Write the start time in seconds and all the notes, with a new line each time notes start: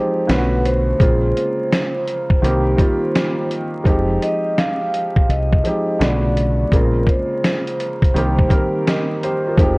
Already playing: F3 G#3 C4 D#4 G4 C5
0.27 B1 D3 A3 B3 C#4 F4 B4, snare, closed hi-hat
0.37 F#4
0.60 B4
0.65 C5, closed hi-hat
0.99 A#1 C#3 G#3 A#3 C4 F4, kick, closed hi-hat
1.37 closed hi-hat
1.72 snare, closed hi-hat
2.08 closed hi-hat
2.30 kick
2.42 C2 D#3 G3 A#3 C4 G4, closed hi-hat
2.77 D#3 G3 A#3 C4 F4, kick, closed hi-hat
3.15 snare, closed hi-hat
3.51 closed hi-hat
3.84 F1 F3 G#3 C4 D#4 G4, kick, closed hi-hat
4.22 D#5, closed hi-hat
4.58 F5, snare, closed hi-hat
4.94 closed hi-hat
5.16 kick
5.29 C2 D#5, closed hi-hat
5.53 kick
5.64 F3 G#3 C4 D#4, closed hi-hat
5.68 G4
5.99 B1 C#3 D3 A3 B3 F4 D5, snare, closed hi-hat
6.09 F#4
6.37 closed hi-hat
6.72 A#1 C#3 G#3 A#3 C4 F4 A#4, kick, closed hi-hat
7.07 C5, kick, closed hi-hat
7.44 snare, closed hi-hat
7.68 closed hi-hat
7.80 closed hi-hat
8.02 kick, closed hi-hat
8.14 C2 D#3 G3 A#3 C4 G4, closed hi-hat
8.39 kick
8.49 D#3 G3 A#3 C4 A#4, kick, closed hi-hat
8.87 A#4 D#5, snare, closed hi-hat
9.23 G4 C5, closed hi-hat
9.46 F4 A#4
9.57 F1 F3 G#3 C4 D#4 G4, kick, closed hi-hat